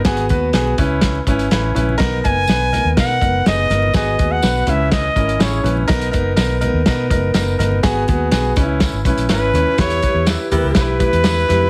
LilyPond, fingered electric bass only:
\new Staff \with { instrumentName = "Fingered electric bass" } { \clef bass \time 4/4 \key b \major \tempo 4 = 123 gis,,8 dis,8 b,,8 cis,4 gis,,8 a,,8 ais,,8 | b,,8 fis,,8 b,,8. dis,16 b,8 fis,,8 fis,,8 g,,8 | gis,,8 dis,8 b,,8 cis,4 gis,,8 a,,8 ais,,8 | b,,8 fis,,8 b,,8. dis,16 b,8 fis,,8 fis,,8 g,,8 |
gis,,8 dis,8 b,,8 cis,8. gis,,16 b,,16 ais,,16 gis,,8 dis,16 r16 | e,8 r16 e,8 r16 dis,16 cis,16 b,,8. e,8. eis,8 | }